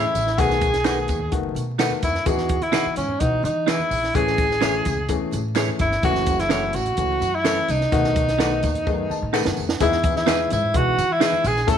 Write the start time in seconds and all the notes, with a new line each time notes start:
Already playing: E3 A3 C#4 E4 G#4
0.02 high conga
0.14 A1, closed hi-hat, tambourine, high conga
0.27 snare
0.38 B1 D#3 A3 B3 F#4 G#4, kick, closed hi-hat, tambourine, muted conga, low conga
0.50 snare
0.61 kick, closed hi-hat, tambourine
0.73 snare, closed hi-hat, high conga
0.85 D#3 A3 B3 D#4 F#4 A4 B4, snare, clap, closed hi-hat, tambourine, muted conga, high conga
0.96 muted conga
1.08 D#2, kick, closed hi-hat, tambourine, high conga, low conga
1.20 low conga
1.31 F#1 D#3 A3 B3 F#4, kick, closed hi-hat
1.55 B2, closed hi-hat, tambourine, high conga
1.79 D#3 A3 B3 D#4 F#4 A4 B4, snare, clap, closed hi-hat, tambourine, muted conga
1.90 muted conga, high conga
2.02 F2 E4, kick, closed hi-hat, tambourine, high conga
2.15 snare
2.26 E2 E3 B3 D#4 F#4 G#4, kick, closed hi-hat, tambourine, muted conga, low conga
2.38 snare, muted conga
2.49 kick, closed hi-hat
2.61 E4, closed hi-hat, high conga
2.72 E3 B3 D#4 F#4 G#4 B4, snare, clap, closed hi-hat, tambourine, high conga
2.85 muted upright bass stroke
2.96 G#2 C#4, closed hi-hat, tambourine, high conga
3.09 low conga
3.20 B1 E3 B3 D#4 F#4, kick, closed hi-hat, tambourine
3.31 muted conga
3.43 E3 D#4, closed hi-hat, tambourine, high conga
3.67 E3 B3 D#4 E4 G#4 B4, snare, clap, closed hi-hat, tambourine, muted conga
3.78 muted conga, high conga
3.90 A#1, open hi-hat, tambourine, high conga
4.04 snare
4.14 A1 E3 A3 C#4 G#4, kick, closed hi-hat, tambourine, muted conga, low conga
4.27 snare
4.38 kick, closed hi-hat, tambourine
4.49 snare, high conga
4.61 E3 A3 C#4 E4 G#4 C#5, snare, clap, closed hi-hat, tambourine, muted conga, high conga
4.73 muted conga
4.85 C#2, kick, closed hi-hat, tambourine, high conga
4.97 low conga
5.08 E2 E3 A3 C#4 G#4, kick, closed hi-hat, tambourine
5.32 A2, closed hi-hat, tambourine, high conga
5.56 E3 A3 C#4 E4 G#4 C#5, snare, clap, closed hi-hat, tambourine, muted conga
5.67 muted conga, high conga
5.79 G1 E4, kick, closed hi-hat, tambourine, high conga
5.92 snare
6.02 F#1 E3 A3 C#4 F#4, kick, closed hi-hat, tambourine, muted conga, low conga
6.15 snare
6.26 kick, closed hi-hat, tambourine
6.38 E4, snare, closed hi-hat, high conga
6.49 E3 A3 C#4 E4 F#4 A4 C#5, snare, clap, closed hi-hat, tambourine, muted conga, high conga
6.73 A1 F#4, closed hi-hat, tambourine, high conga
6.86 closed hi-hat, low conga
6.97 C#2 E3 A3 C#4 F#4, kick, closed hi-hat, tambourine, muted conga
7.09 muted conga
7.21 F#2, closed hi-hat, tambourine, high conga
7.35 E4
7.44 E3 A3 C#4 E4 A4 C#5, snare, clap, closed hi-hat, tambourine, muted conga
7.56 high conga
7.68 C2 D#4, closed hi-hat, tambourine, high conga
7.81 snare
7.92 B1 D#3 A3 B3 F#4, kick, closed hi-hat, tambourine, low conga
8.04 snare
8.16 kick, closed hi-hat, tambourine
8.27 snare, closed hi-hat, high conga
8.38 D#3 A3 B3 D#4 F#4 A4 B4, snare, clap, closed hi-hat, tambourine, muted conga, high conga
8.51 muted conga
8.62 D#2, kick, closed hi-hat, tambourine, high conga, low conga
8.75 closed hi-hat, low conga
8.86 F#2 D#3 A3 B3 G#4, kick, tambourine, muted conga
8.98 muted conga
9.10 A5, muted upright bass stroke, tambourine, high conga
9.22 A2
9.33 D#3 A3 B3 D#4 G#4 A4 B4 F#5, clap, tambourine
9.45 F#2, snare, high conga
9.57 F2, tambourine, high conga
9.69 snare
9.80 E2 E3 G#3 B3 D#4 E4 G#4, kick, closed hi-hat, tambourine, muted conga, low conga
9.92 snare, muted conga
10.03 E3 G#3 B3 D#4 G#4, kick, closed hi-hat, tambourine
10.15 E4, snare, high conga
10.26 E3 G#3 B3 D#4 G#4 B4, snare, clap, closed hi-hat, tambourine, muted conga, high conga
10.50 G#2 E4, closed hi-hat, tambourine, high conga, low conga
10.62 low conga
10.74 B1 E3 G#3 B3 D#4 F#4, kick, closed hi-hat
10.85 muted conga
10.97 E3, closed hi-hat, tambourine, high conga
11.12 E4
11.20 E3 G#3 B3 D#4 G#4 B4, snare, clap, closed hi-hat, tambourine
11.32 muted conga, high conga
11.44 A#1 G#4, closed hi-hat, tambourine, high conga
11.56 snare
11.62 G#4
11.67 A1 G#3 A3 C#4 E4 A4, kick, closed hi-hat, tambourine, muted conga, low conga